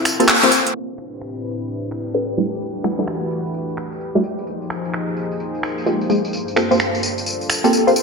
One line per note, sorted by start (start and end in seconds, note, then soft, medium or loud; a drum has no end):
0.00 0.71 A#3 medium
0.00 0.73 C4 medium
0.00 0.73 F4 medium
0.00 0.73 A4 medium
0.05 finger snap soft
0.05 open hi-hat loud
0.05 tambourine medium
0.20 0.40 A#3 medium
0.20 0.40 C4 medium
0.20 0.40 F4 medium
0.20 0.40 G4 medium
0.20 0.40 A4 loud
0.20 closed hi-hat medium
0.20 tambourine soft
0.29 clap loud
0.29 tambourine soft
0.43 0.50 A#3 medium
0.43 0.50 C4 medium
0.43 0.58 C4 medium
0.43 0.50 F4 medium
0.43 0.50 G4 medium
0.43 0.50 C5 medium
0.43 closed hi-hat medium
0.43 tambourine soft
0.52 open hi-hat loud
0.52 tambourine medium
0.67 closed hi-hat medium
0.67 tambourine soft
0.75 2.36 A2 medium
0.75 2.36 C4 medium
0.75 4.20 D4 medium
0.75 2.36 E4 medium
0.75 6.29 G4 medium
0.75 2.36 B4 medium
0.75 crash medium
0.98 finger snap soft
0.98 tambourine medium
1.13 tambourine soft
1.21 finger snap medium
1.36 tambourine soft
1.45 tambourine medium
1.60 tambourine soft
1.68 tambourine soft
1.83 tambourine soft
1.91 finger snap soft
1.91 tambourine medium
2.06 tambourine soft
2.14 2.32 C4 medium
2.14 2.32 D4 medium
2.14 2.32 G4 medium
2.14 2.32 A4 medium
2.14 2.32 B4 medium
2.14 tambourine soft
2.30 tambourine soft
2.37 4.22 E3 medium
2.37 2.50 G3 medium
2.37 4.22 A3 medium
2.37 2.50 A3 medium
2.37 2.50 D4 medium
2.37 2.50 E4 medium
2.37 4.22 F#4 medium
2.37 2.50 G4 medium
2.37 4.22 B4 medium
2.37 tambourine medium
2.53 tambourine soft
2.61 tambourine soft
2.76 tambourine soft
2.84 2.96 G3 medium
2.84 2.96 A3 medium
2.84 2.96 D4 medium
2.84 2.96 E4 medium
2.84 2.96 F#4 medium
2.84 finger snap medium
2.84 tambourine medium
2.99 3.06 G3 medium
2.99 3.06 A3 medium
2.99 3.06 D4 medium
2.99 3.06 E4 medium
2.99 3.06 A4 medium
2.99 tambourine soft
3.08 finger snap medium
3.08 tambourine soft
3.22 tambourine soft
3.31 tambourine medium
3.46 tambourine soft
3.54 tambourine soft
3.69 tambourine soft
3.77 finger snap soft
3.77 tambourine medium
3.92 tambourine soft
4.01 tambourine soft
4.15 4.23 G3 medium
4.15 4.23 A3 medium
4.15 4.23 D4 medium
4.15 4.23 E4 medium
4.15 4.23 F#4 medium
4.15 tambourine soft
4.23 6.31 F3 medium
4.23 8.03 A#3 medium
4.23 6.31 D#4 medium
4.23 6.31 G#4 medium
4.23 8.03 C5 medium
4.23 tambourine medium
4.39 tambourine soft
4.47 tambourine soft
4.62 tambourine soft
4.70 finger snap soft
4.70 tambourine medium
4.85 tambourine soft
4.94 finger snap medium
4.94 tambourine soft
5.08 tambourine soft
5.17 tambourine medium
5.32 tambourine soft
5.40 tambourine soft
5.55 tambourine soft
5.63 finger snap soft
5.63 tambourine medium
5.78 tambourine soft
5.86 6.04 G#3 medium
5.86 6.04 A#3 medium
5.86 6.04 D#4 medium
5.86 6.04 F4 medium
5.86 6.04 G4 medium
5.86 tambourine soft
6.01 tambourine soft
6.10 6.22 G#3 medium
6.10 6.22 A#3 medium
6.10 6.22 D#4 medium
6.10 6.22 F4 medium
6.10 6.22 G#4 medium
6.10 tambourine medium
6.25 tambourine soft
6.33 8.03 G2 medium
6.33 8.03 D4 medium
6.33 8.03 F4 medium
6.33 8.03 A4 medium
6.33 tambourine soft
6.48 tambourine soft
6.56 6.68 A#3 medium
6.56 6.68 C4 medium
6.56 6.68 F4 medium
6.56 6.68 G4 medium
6.56 6.68 A4 medium
6.56 finger snap soft
6.56 tambourine medium
6.71 6.78 A#3 medium
6.71 6.78 C4 medium
6.71 6.78 F4 medium
6.71 6.78 G4 medium
6.71 6.78 C5 loud
6.71 tambourine soft
6.80 finger snap medium
6.80 tambourine soft
6.95 tambourine soft
7.03 tambourine medium
7.18 tambourine soft
7.26 tambourine soft
7.41 tambourine soft
7.50 finger snap soft
7.50 tambourine medium
7.64 7.84 A#3 medium
7.64 7.84 C4 medium
7.64 7.84 F4 medium
7.64 7.84 G4 medium
7.64 7.84 A4 medium
7.64 tambourine soft
7.73 tambourine soft
7.87 7.94 A#3 medium
7.87 7.94 C4 medium
7.87 7.94 F4 medium
7.87 7.94 G4 medium
7.87 7.94 C5 medium
7.87 tambourine soft
7.96 tambourine medium